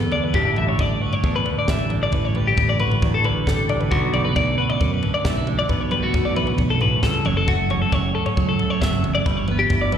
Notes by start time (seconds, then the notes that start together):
Already playing: E2 G2 B3 D4 F#4 A4
0.00 floor tom
0.11 D3 D5, mid tom
0.24 B4
0.34 A1 A2 D3 G3 D4 E4 G4, kick, floor tom
0.56 G3 E5, mid tom
0.69 C#5
0.79 A1 D4 D5, kick, floor tom
1.01 F#4 B4
1.13 C#5, floor tom
1.24 E2 D4, kick
1.36 B4
1.45 D3, floor tom
1.59 D5
1.68 A1 G3 E5, kick, snare
1.79 floor tom
1.90 D3, mid tom
2.03 D5
2.12 A1 A2 B4, kick, floor tom
2.25 C#5
2.35 G3 B4, mid tom
2.47 G4
2.57 A1 B3, kick, floor tom
2.69 D4 D5
2.80 F#4 B4, mid tom
2.91 floor tom
3.02 A1 D4, kick, mid tom
3.14 A4
3.25 D3 B4, floor tom
3.47 A1 G3 A4, kick, snare
3.69 D3 D5, mid tom
3.80 B4, floor tom
3.91 B1 B2 F#4, kick, floor tom
4.14 G3 D5, mid tom
4.25 A3 B4
4.36 B1 C#4 D5, kick, floor tom
4.58 F#4 B4
4.70 D5, floor tom
4.81 F#2 C#4, kick
4.92 B4
5.03 D3, floor tom
5.14 D5
5.25 B1 G3 E5, kick, snare
5.35 A3, floor tom
5.47 D3, mid tom
5.59 D5
5.69 B1 B2 B4, kick, floor tom
5.81 C#5
5.91 G3 B4, mid tom
6.02 A3 F#4
6.14 B1 B3, kick, floor tom
6.25 C#4 D5
6.35 E4 B4, mid tom
6.47 F#4, floor tom
6.58 B1 B3, kick, mid tom
6.69 C#4 A4
6.81 A2 B4, floor tom
7.03 C#2 G2 A4, kick, snare
7.14 floor tom
7.25 F#1 F#2 C#5, mid tom
7.37 A4
7.48 A3 F#4, kick, floor tom
7.70 C#4 C#5, mid tom
7.82 A4
7.92 F#1 F#4 C#5, kick, floor tom
8.15 C#4 A4
8.26 C#5, floor tom
8.37 C#2 F#3, kick
8.49 A4
8.59 A3, floor tom
8.70 C#5
8.81 F#1 F#3 E5, kick, snare
8.93 floor tom
9.04 F#2, mid tom
9.15 D5
9.26 G1 G2 B4, kick, floor tom
9.37 C#5
9.48 B3 B4, mid tom
9.59 G4
9.70 G1 E4, kick, floor tom
9.81 D5
9.92 A4 B4, mid tom